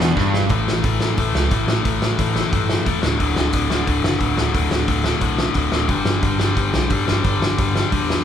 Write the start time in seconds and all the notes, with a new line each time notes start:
Already playing: E1 E2 D4 D5
0.00 snare
0.17 G1 G2, kick, snare
0.34 snare
0.49 A1 A2 E3 A3, kick, open hi-hat
0.67 A1, snare
0.84 A1 A2 E3 A3, kick, open hi-hat
1.00 A1 A2 E3 A3, snare
1.17 A1 A2 E3 A3, kick, open hi-hat
1.33 C#2, snare
1.51 A1 A2 E3 A3, kick, open hi-hat
1.67 A1 A2 E3 A3, snare
1.83 A1 A2 E3 A3, kick, open hi-hat
2.01 A1, snare
2.17 A1 A2 E3 A3, kick, open hi-hat
2.34 A2 E3 A3, snare
2.52 G2 A2 E3 A3, kick, open hi-hat
2.69 snare
2.85 E1 A2 E3 A3, kick, open hi-hat
3.02 D1 D2 A2 D3, snare
3.19 D1 D2 A2 D3, kick, open hi-hat
3.36 D1, snare
3.53 D1 D2 A2 D3, kick, open hi-hat
3.69 D1 D2 A2 D3, snare
3.87 D1 D2 A2 D3, kick, open hi-hat
4.03 F#1, snare
4.20 D1 D2 A2 D3, kick, open hi-hat
4.36 D1 D2 A2 D3, snare
4.53 D1 D2 A2 D3, kick, open hi-hat
4.70 D1, snare
4.88 D1 D2 A2 D3, kick, open hi-hat
5.04 D2 A2 D3, snare
5.21 B1 D2 A2 D3, kick, open hi-hat
5.38 snare
5.54 D1 D2 A2 D3, kick, open hi-hat
5.71 D1 D2 A2 D3, snare
5.88 G1 G2 D3 G3, kick, open hi-hat
6.05 G1, snare
6.22 G1 G2 D3 G3, kick, open hi-hat
6.38 G1 G2 D3 G3, snare
6.56 G1 G2 D3 G3, kick, open hi-hat
6.73 B1, snare
6.90 G1 G2 D3 G3, kick, open hi-hat
7.07 G1 G2 D3 G3, snare
7.24 G1 G2 D3 G3, kick, open hi-hat
7.40 G1, snare
7.57 G1 G2 D3 G3, kick, open hi-hat
7.74 G2 D3 G3, snare
7.92 E2 G2 D3 G3, kick, open hi-hat
8.10 snare